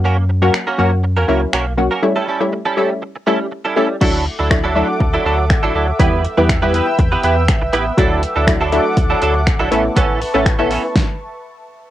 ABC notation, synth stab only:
X:1
M:4/4
L:1/16
Q:1/4=121
K:Amix
V:1 name="Synth stab"
[F,^A,CF]2 z [F,A,CF] z2 [F,A,CF]2 z2 [F,A,CE]2 z2 [F,A,CF] z | [G,A,CE] z2 [G,A,CE] z2 [G,A,CE]2 z2 [G,A,CE]2 z2 [G,A,CE] z | [K:D] [F,A,DE]2 z2 [F,A,DE] z [F,A,DE]4 z6 | [E,G,B,E] z2 [E,G,B,E] z [E,G,B,E]4 z6 z |
[F,A,DE]2 z2 [F,A,DE] z [F,A,DE]4 z4 [A,B,CE]2- | [A,B,CE]2 z [A,B,CE] z [A,B,CE]3 z8 |]